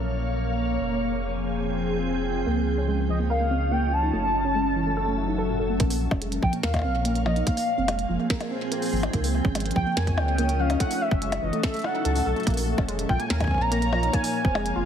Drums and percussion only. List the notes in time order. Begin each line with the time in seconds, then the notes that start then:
5.80 kick, closed hi-hat
5.90 open hi-hat
6.11 kick, percussion blips
6.22 closed hi-hat
6.32 closed hi-hat
6.43 kick
6.53 closed hi-hat
6.63 snare, closed hi-hat
6.74 kick, closed hi-hat, percussion blips
6.76 percussion blips
6.79 percussion blips
6.82 percussion blips
7.05 closed hi-hat
7.15 closed hi-hat
7.26 percussion blips
7.36 closed hi-hat
7.47 kick, closed hi-hat
7.57 open hi-hat
7.88 closed hi-hat, percussion blips
7.99 closed hi-hat
8.30 kick, snare, closed hi-hat
8.41 closed hi-hat, percussion blips
8.72 closed hi-hat
8.82 open hi-hat
8.86 open hi-hat
8.89 open hi-hat
8.93 open hi-hat
8.96 open hi-hat
9.00 closed hi-hat, open hi-hat, percussion blips
9.13 kick, closed hi-hat
9.24 open hi-hat
9.45 kick
9.55 closed hi-hat, percussion blips
9.60 closed hi-hat
9.66 closed hi-hat
9.71 closed hi-hat
9.76 kick
9.97 snare, closed hi-hat
10.07 kick, closed hi-hat
10.18 percussion blips
10.38 closed hi-hat
10.49 closed hi-hat
10.70 closed hi-hat, percussion blips
10.80 kick, closed hi-hat
10.91 open hi-hat
11.11 kick
11.22 closed hi-hat
11.32 closed hi-hat, percussion blips
11.53 closed hi-hat
11.63 kick, snare, closed hi-hat
11.74 closed hi-hat
11.77 closed hi-hat
11.79 closed hi-hat
11.82 closed hi-hat, percussion blips
12.05 closed hi-hat
12.15 open hi-hat
12.36 closed hi-hat
12.40 closed hi-hat
12.43 kick, closed hi-hat
12.47 closed hi-hat
12.50 closed hi-hat
12.54 closed hi-hat, open hi-hat
12.78 kick, percussion blips
12.89 closed hi-hat
12.99 closed hi-hat
13.09 kick
13.20 closed hi-hat
13.30 snare, closed hi-hat
13.40 kick, closed hi-hat, percussion blips
13.44 kick
13.47 kick
13.51 kick
13.54 kick
13.58 kick
13.72 closed hi-hat
13.82 closed hi-hat
13.93 percussion blips
14.03 closed hi-hat
14.13 kick, closed hi-hat
14.24 open hi-hat
14.45 kick
14.55 percussion blips
14.66 closed hi-hat